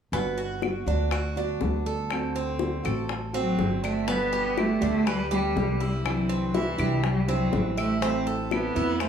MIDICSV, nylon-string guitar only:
0, 0, Header, 1, 3, 480
1, 0, Start_track
1, 0, Key_signature, 1, "major"
1, 0, Tempo, 492611
1, 133, Time_signature, 4, 2, 24, 8
1, 8854, End_track
2, 0, Start_track
2, 0, Title_t, "Nylon-string guitar"
2, 0, Program_c, 0, 24
2, 126, Note_on_c, 0, 55, 59
2, 138, Note_on_c, 0, 59, 58
2, 146, Note_on_c, 0, 66, 62
2, 596, Note_off_c, 0, 55, 0
2, 607, Note_off_c, 0, 59, 0
2, 608, Note_on_c, 0, 55, 45
2, 611, Note_off_c, 0, 66, 0
2, 621, Note_on_c, 0, 59, 44
2, 627, Note_on_c, 0, 66, 45
2, 827, Note_off_c, 0, 66, 0
2, 839, Note_on_c, 0, 66, 67
2, 842, Note_off_c, 0, 55, 0
2, 849, Note_off_c, 0, 59, 0
2, 862, Note_on_c, 0, 59, 46
2, 1077, Note_off_c, 0, 66, 0
2, 1079, Note_off_c, 0, 59, 0
2, 1331, Note_on_c, 0, 66, 60
2, 1351, Note_on_c, 0, 59, 47
2, 1564, Note_off_c, 0, 59, 0
2, 1564, Note_off_c, 0, 66, 0
2, 1565, Note_on_c, 0, 55, 45
2, 1576, Note_on_c, 0, 59, 51
2, 1590, Note_on_c, 0, 66, 54
2, 2041, Note_off_c, 0, 55, 0
2, 2047, Note_off_c, 0, 59, 0
2, 2052, Note_on_c, 0, 50, 62
2, 2054, Note_off_c, 0, 66, 0
2, 2059, Note_on_c, 0, 57, 66
2, 2066, Note_on_c, 0, 60, 73
2, 2076, Note_on_c, 0, 66, 79
2, 2508, Note_off_c, 0, 50, 0
2, 2519, Note_off_c, 0, 57, 0
2, 2519, Note_on_c, 0, 50, 45
2, 2529, Note_off_c, 0, 60, 0
2, 2531, Note_on_c, 0, 57, 43
2, 2532, Note_off_c, 0, 66, 0
2, 2541, Note_on_c, 0, 60, 44
2, 2544, Note_on_c, 0, 66, 45
2, 2752, Note_off_c, 0, 66, 0
2, 2759, Note_off_c, 0, 50, 0
2, 2763, Note_on_c, 0, 66, 70
2, 2765, Note_off_c, 0, 57, 0
2, 2766, Note_off_c, 0, 60, 0
2, 2778, Note_on_c, 0, 60, 62
2, 2790, Note_on_c, 0, 57, 53
2, 3001, Note_off_c, 0, 66, 0
2, 3003, Note_off_c, 0, 57, 0
2, 3005, Note_off_c, 0, 60, 0
2, 3249, Note_on_c, 0, 66, 61
2, 3261, Note_on_c, 0, 60, 54
2, 3269, Note_on_c, 0, 57, 48
2, 3481, Note_off_c, 0, 57, 0
2, 3484, Note_off_c, 0, 66, 0
2, 3488, Note_on_c, 0, 50, 47
2, 3490, Note_off_c, 0, 60, 0
2, 3492, Note_on_c, 0, 57, 44
2, 3504, Note_on_c, 0, 60, 53
2, 3507, Note_on_c, 0, 66, 46
2, 3964, Note_off_c, 0, 50, 0
2, 3966, Note_off_c, 0, 57, 0
2, 3970, Note_on_c, 0, 47, 57
2, 3971, Note_off_c, 0, 60, 0
2, 3973, Note_off_c, 0, 66, 0
2, 3978, Note_on_c, 0, 50, 64
2, 3984, Note_on_c, 0, 55, 71
2, 3991, Note_on_c, 0, 59, 78
2, 3993, Note_on_c, 0, 67, 70
2, 4433, Note_off_c, 0, 50, 0
2, 4444, Note_off_c, 0, 55, 0
2, 4445, Note_off_c, 0, 47, 0
2, 4445, Note_on_c, 0, 50, 41
2, 4455, Note_off_c, 0, 59, 0
2, 4456, Note_off_c, 0, 67, 0
2, 4456, Note_on_c, 0, 55, 48
2, 4468, Note_on_c, 0, 59, 50
2, 4475, Note_on_c, 0, 67, 44
2, 4674, Note_off_c, 0, 67, 0
2, 4682, Note_off_c, 0, 50, 0
2, 4685, Note_off_c, 0, 59, 0
2, 4685, Note_on_c, 0, 67, 73
2, 4687, Note_off_c, 0, 55, 0
2, 4696, Note_on_c, 0, 59, 63
2, 4705, Note_on_c, 0, 55, 59
2, 4709, Note_on_c, 0, 50, 55
2, 4922, Note_off_c, 0, 67, 0
2, 4927, Note_off_c, 0, 59, 0
2, 4929, Note_off_c, 0, 50, 0
2, 4932, Note_off_c, 0, 55, 0
2, 5174, Note_on_c, 0, 67, 62
2, 5186, Note_on_c, 0, 59, 55
2, 5192, Note_on_c, 0, 55, 53
2, 5199, Note_on_c, 0, 50, 48
2, 5392, Note_off_c, 0, 50, 0
2, 5401, Note_off_c, 0, 55, 0
2, 5404, Note_on_c, 0, 50, 43
2, 5406, Note_off_c, 0, 67, 0
2, 5409, Note_off_c, 0, 59, 0
2, 5412, Note_on_c, 0, 55, 49
2, 5421, Note_on_c, 0, 59, 51
2, 5431, Note_on_c, 0, 67, 59
2, 5881, Note_off_c, 0, 50, 0
2, 5882, Note_on_c, 0, 48, 61
2, 5885, Note_off_c, 0, 55, 0
2, 5889, Note_off_c, 0, 59, 0
2, 5892, Note_on_c, 0, 52, 63
2, 5894, Note_off_c, 0, 67, 0
2, 5900, Note_on_c, 0, 62, 73
2, 5908, Note_on_c, 0, 64, 73
2, 6351, Note_off_c, 0, 52, 0
2, 6360, Note_off_c, 0, 48, 0
2, 6363, Note_on_c, 0, 52, 44
2, 6368, Note_off_c, 0, 62, 0
2, 6372, Note_off_c, 0, 64, 0
2, 6374, Note_on_c, 0, 55, 46
2, 6382, Note_on_c, 0, 62, 48
2, 6387, Note_on_c, 0, 64, 50
2, 6593, Note_off_c, 0, 64, 0
2, 6600, Note_off_c, 0, 52, 0
2, 6603, Note_off_c, 0, 62, 0
2, 6605, Note_on_c, 0, 64, 71
2, 6606, Note_off_c, 0, 55, 0
2, 6615, Note_on_c, 0, 62, 63
2, 6621, Note_on_c, 0, 55, 61
2, 6632, Note_on_c, 0, 52, 57
2, 6839, Note_off_c, 0, 52, 0
2, 6841, Note_off_c, 0, 64, 0
2, 6844, Note_off_c, 0, 55, 0
2, 6846, Note_off_c, 0, 62, 0
2, 7092, Note_on_c, 0, 64, 65
2, 7095, Note_on_c, 0, 62, 51
2, 7102, Note_on_c, 0, 55, 54
2, 7111, Note_on_c, 0, 52, 44
2, 7308, Note_off_c, 0, 52, 0
2, 7319, Note_on_c, 0, 52, 49
2, 7321, Note_off_c, 0, 55, 0
2, 7324, Note_off_c, 0, 64, 0
2, 7326, Note_off_c, 0, 62, 0
2, 7332, Note_on_c, 0, 55, 48
2, 7340, Note_on_c, 0, 62, 53
2, 7349, Note_on_c, 0, 64, 58
2, 7791, Note_off_c, 0, 52, 0
2, 7802, Note_on_c, 0, 52, 61
2, 7804, Note_off_c, 0, 55, 0
2, 7807, Note_off_c, 0, 62, 0
2, 7812, Note_off_c, 0, 64, 0
2, 7813, Note_on_c, 0, 57, 75
2, 7817, Note_on_c, 0, 60, 66
2, 7824, Note_on_c, 0, 64, 71
2, 8273, Note_off_c, 0, 52, 0
2, 8281, Note_off_c, 0, 57, 0
2, 8284, Note_on_c, 0, 52, 45
2, 8286, Note_off_c, 0, 60, 0
2, 8289, Note_off_c, 0, 64, 0
2, 8293, Note_on_c, 0, 57, 43
2, 8297, Note_on_c, 0, 60, 46
2, 8306, Note_on_c, 0, 64, 51
2, 8514, Note_off_c, 0, 64, 0
2, 8519, Note_off_c, 0, 52, 0
2, 8524, Note_off_c, 0, 57, 0
2, 8526, Note_off_c, 0, 60, 0
2, 8526, Note_on_c, 0, 64, 70
2, 8541, Note_on_c, 0, 60, 63
2, 8553, Note_on_c, 0, 57, 54
2, 8759, Note_off_c, 0, 57, 0
2, 8760, Note_off_c, 0, 64, 0
2, 8765, Note_off_c, 0, 60, 0
2, 8854, End_track
3, 0, Start_track
3, 0, Title_t, "Muted nylon-string guitar strokes"
3, 1086, Note_on_c, 9, 29, 48
3, 1184, Note_off_c, 9, 29, 0
3, 3009, Note_on_c, 9, 29, 56
3, 3107, Note_off_c, 9, 29, 0
3, 4939, Note_on_c, 9, 29, 50
3, 5036, Note_off_c, 9, 29, 0
3, 6849, Note_on_c, 9, 29, 52
3, 6947, Note_off_c, 9, 29, 0
3, 8766, Note_on_c, 9, 29, 54
3, 8854, Note_off_c, 9, 29, 0
3, 8854, End_track
0, 0, End_of_file